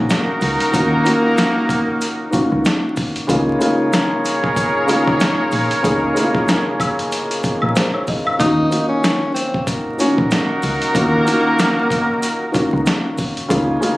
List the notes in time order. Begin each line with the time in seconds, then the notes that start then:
Already playing: D#3 A#3 C#4 D#4 F4 F#4 A#4
0.10 snare, closed hi-hat, maracas
0.41 C#2, open hi-hat, maracas
0.60 closed hi-hat
0.72 D#2 D#3 A#3 C#4 F4 F#4, kick, closed hi-hat, maracas
1.03 D#3 A#3 C#4 F4 F#4, closed hi-hat, maracas
1.38 snare, closed hi-hat, maracas
1.69 kick, closed hi-hat, maracas
2.01 closed hi-hat, maracas
2.31 D#3 A#3 C#4 F4 F#4, kick, closed hi-hat, maracas
2.52 C#2
2.65 snare, closed hi-hat, maracas
2.96 kick, open hi-hat, maracas
3.16 closed hi-hat
3.27 C#2 C#3 G#3 A#3 D#4 F4 G#4 A#4 C#5, kick, closed hi-hat, maracas
3.59 C#3 G#3 A#3 D#4 F4, closed hi-hat, maracas
3.93 snare, closed hi-hat, maracas
4.25 closed hi-hat, maracas
4.44 kick
4.56 kick, closed hi-hat, maracas
4.87 C#3 G#3 A#3 D#4 F4, closed hi-hat, maracas
5.08 G#1, kick
5.20 snare, closed hi-hat, maracas
5.51 A#1, open hi-hat, maracas
5.71 closed hi-hat
5.83 C#2 C#3 G#3 A#3 D#4 G#4, kick, closed hi-hat, maracas
6.14 C#3 G#3 A#3 D#4 E4, closed hi-hat, maracas
6.24 F4
6.35 kick
6.48 snare, closed hi-hat, maracas
6.80 kick, closed hi-hat, high woodblock, maracas
6.99 closed hi-hat
7.12 closed hi-hat, maracas
7.31 closed hi-hat
7.43 kick, closed hi-hat, maracas
7.62 A#1 A#4, high woodblock
7.75 C5, snare, closed hi-hat, maracas
7.93 C#5, high woodblock
8.07 D#5, kick, open hi-hat, maracas
8.25 F5, high woodblock
8.39 D#2 D#3 A#3 C#4 D#4 F4 F#4, kick, closed hi-hat, maracas
8.69 D#3 A#3 C#4 F4 F#4, closed hi-hat, maracas
8.88 C#4
9.04 snare, closed hi-hat, maracas
9.34 C4, closed hi-hat, maracas
9.54 kick
9.67 D#4 F#4 A#4, kick, closed hi-hat, maracas
9.98 D#3 A#3 C#4 F4 F#4, closed hi-hat, maracas
10.18 A#1, kick
10.31 snare, closed hi-hat, maracas
10.62 C#2, open hi-hat, maracas
10.82 closed hi-hat
10.93 D#2 D#3 A#3 C#4 F4 F#4, kick, closed hi-hat, maracas
11.24 D#3 A#3 C#4 F4 F#4, closed hi-hat, maracas
11.59 snare, closed hi-hat, maracas
11.90 kick, closed hi-hat, maracas
12.22 closed hi-hat, maracas
12.52 D#3 A#3 C#4 F4 F#4, kick, closed hi-hat, maracas
12.73 C#2
12.86 snare, closed hi-hat, maracas
13.18 kick, open hi-hat, maracas
13.37 closed hi-hat
13.48 C#2 C#3 G#3 A#3 D#4 F4 G#4 A#4 C#5, kick, closed hi-hat, maracas
13.80 C#3 G#3 A#3 D#4 F4, closed hi-hat, maracas